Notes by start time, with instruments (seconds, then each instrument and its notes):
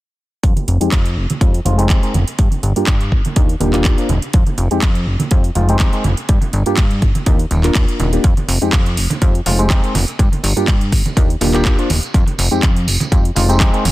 0.43 analog synth bass F2, kick, closed hi-hat
0.56 closed hi-hat, high conga
0.68 analog synth bass F1, closed hi-hat, tambourine
0.80 analog synth bass F2, reed electric piano G#3 C4 D#4 G4, closed hi-hat
0.92 analog synth bass F2, kick, clap, closed hi-hat, tambourine, high conga
1.05 closed hi-hat
1.17 analog synth bass F1
1.30 closed hi-hat, tambourine, high conga
1.41 analog synth bass F2, reed electric piano G#3 C4 D#4 G4, kick, closed hi-hat
1.54 closed hi-hat
1.65 analog synth bass F1, reed electric piano G#3 C4 D#4 F4, closed hi-hat, tambourine, high conga
1.78 reed electric piano G#3 C4 D#4 G4, closed hi-hat, tambourine
1.90 analog synth bass F2, kick, clap, closed hi-hat
2.03 reed electric piano G#3 C4 D#4 A#4, closed hi-hat
2.14 analog synth bass F1, closed hi-hat, tambourine, high conga
2.27 closed hi-hat, tambourine
2.39 analog synth bass G2, kick, closed hi-hat
2.51 closed hi-hat, high conga
2.63 analog synth bass G1, closed hi-hat, tambourine
2.76 analog synth bass G2, reed electric piano A#3 D4 F4 G4, closed hi-hat, tambourine
2.87 analog synth bass G2, kick, clap, closed hi-hat, tambourine, high conga
3.00 closed hi-hat
3.12 analog synth bass G1, kick, tambourine
3.25 closed hi-hat, tambourine, high conga
3.36 analog synth bass D#2, reed electric piano A#3 D4 F4 G4, kick, closed hi-hat
3.49 closed hi-hat
3.60 analog synth bass D#1, reed electric piano A#3 D4 F4 G4, closed hi-hat, tambourine, high conga
3.73 reed electric piano A#3 D4 F4 G4, clap, closed hi-hat
3.85 analog synth bass D#2, reed electric piano A#3 D4 G4, kick, clap, closed hi-hat
3.98 reed electric piano A#3 D4 F4 C5, closed hi-hat
4.09 analog synth bass D#1, closed hi-hat, tambourine, high conga
4.22 closed hi-hat, tambourine
4.33 analog synth bass F2, kick, closed hi-hat
4.47 closed hi-hat, high conga
4.58 analog synth bass F1, closed hi-hat, tambourine
4.71 analog synth bass F2, reed electric piano G#3 C4 D#4 G4, closed hi-hat, tambourine
4.82 analog synth bass F2, kick, clap, closed hi-hat, tambourine, high conga
4.95 closed hi-hat
5.06 analog synth bass F1, tambourine
5.19 closed hi-hat, tambourine, high conga
5.31 analog synth bass F2, reed electric piano G#3 C4 D#4 G4, kick, closed hi-hat
5.44 closed hi-hat
5.55 analog synth bass F1, reed electric piano G#3 C4 D#4 F4, closed hi-hat, tambourine, high conga
5.69 reed electric piano G#3 C4 D#4 G4, closed hi-hat, tambourine
5.79 analog synth bass F2, reed electric piano G#3 C4 D#4 G4, kick, clap, closed hi-hat
5.93 reed electric piano G#3 C4 D#4 A#4, closed hi-hat
6.04 analog synth bass F1, closed hi-hat, tambourine, high conga
6.17 closed hi-hat, tambourine
6.29 analog synth bass G2, kick, closed hi-hat
6.41 closed hi-hat, high conga
6.53 analog synth bass G1, closed hi-hat, tambourine
6.66 analog synth bass G2, reed electric piano A#3 D4 F4 G4, closed hi-hat, tambourine
6.77 analog synth bass G2, kick, clap, closed hi-hat, tambourine, high conga
6.91 closed hi-hat
7.02 analog synth bass G1, kick, closed hi-hat, tambourine
7.15 closed hi-hat, tambourine, high conga
7.26 analog synth bass D#2, reed electric piano A#3 D4 F4 G4, kick, closed hi-hat
7.39 closed hi-hat
7.51 analog synth bass D#1, closed hi-hat, tambourine, high conga
7.64 reed electric piano A#3 D4 F4 A#4, clap, closed hi-hat, tambourine
7.75 analog synth bass D#2, kick, clap, closed hi-hat
7.88 closed hi-hat
8.00 analog synth bass D#1, closed hi-hat, tambourine, high conga
8.13 reed electric piano A#3 D4 F4 G4, closed hi-hat, tambourine
8.24 analog synth bass F2, kick, closed hi-hat, tambourine
8.37 closed hi-hat, high conga
8.48 analog synth bass F1, open hi-hat, tambourine
8.61 analog synth bass F2, reed electric piano G#3 C4 D#4 G4, closed hi-hat, tambourine
8.73 analog synth bass F2, kick, clap, closed hi-hat, tambourine, high conga
8.86 closed hi-hat
8.97 analog synth bass F1, open hi-hat, tambourine
9.10 closed hi-hat, tambourine, high conga
9.21 analog synth bass F2, reed electric piano G#3 C4 D#4 G4, kick, closed hi-hat, tambourine
9.35 closed hi-hat
9.46 analog synth bass F1, reed electric piano G#3 C4 D#4 F4, open hi-hat, tambourine, high conga
9.59 reed electric piano G#3 C4 D#4 G4, closed hi-hat, tambourine
9.70 analog synth bass F2, reed electric piano G#3 C4 G4, kick, clap, closed hi-hat
9.83 reed electric piano G#3 C4 D#4 A#4, closed hi-hat
9.95 analog synth bass F1, open hi-hat, tambourine, high conga
10.07 closed hi-hat, tambourine
10.19 analog synth bass G2, kick, closed hi-hat, tambourine
10.32 closed hi-hat, high conga
10.43 analog synth bass G1, open hi-hat, tambourine
10.56 analog synth bass G2, reed electric piano A#3 D4 F4 G4, closed hi-hat
10.67 analog synth bass G2, kick, clap, closed hi-hat, tambourine, high conga
10.81 closed hi-hat
10.92 analog synth bass G1, kick, open hi-hat, tambourine
11.05 closed hi-hat, tambourine, high conga
11.16 analog synth bass D#2, reed electric piano A#3 D4 F4 G4, kick, closed hi-hat, tambourine
11.30 closed hi-hat
11.41 analog synth bass D#1, reed electric piano A#3 D4 F4 G4, open hi-hat, tambourine, high conga
11.54 reed electric piano A#3 D4 F4 G4, clap, closed hi-hat, tambourine
11.65 analog synth bass D#2, kick, clap, closed hi-hat
11.78 reed electric piano A#3 D4 F4 C5, closed hi-hat
11.90 analog synth bass D#1, open hi-hat, tambourine, high conga
12.03 closed hi-hat, tambourine
12.14 analog synth bass F2, kick, closed hi-hat, tambourine
12.26 closed hi-hat, high conga
12.38 analog synth bass F1, open hi-hat, tambourine
12.51 analog synth bass F2, reed electric piano G#3 C4 D#4 G4, closed hi-hat, tambourine
12.63 analog synth bass F2, kick, clap, closed hi-hat, tambourine, high conga
12.76 closed hi-hat
12.87 analog synth bass F1, open hi-hat, tambourine
13.00 closed hi-hat, tambourine, high conga
13.11 analog synth bass F2, reed electric piano G#3 C4 D#4 G4, kick, closed hi-hat
13.25 closed hi-hat
13.36 analog synth bass F1, reed electric piano G#3 C4 D#4 F4, open hi-hat, tambourine, high conga
13.49 reed electric piano G#3 C4 D#4 G4, closed hi-hat, tambourine
13.60 analog synth bass F2, reed electric piano G#3 C4 D#4 G4, kick, clap, closed hi-hat
13.73 reed electric piano G#3 C4 D#4 A#4, closed hi-hat
13.85 analog synth bass F1, open hi-hat, tambourine, high conga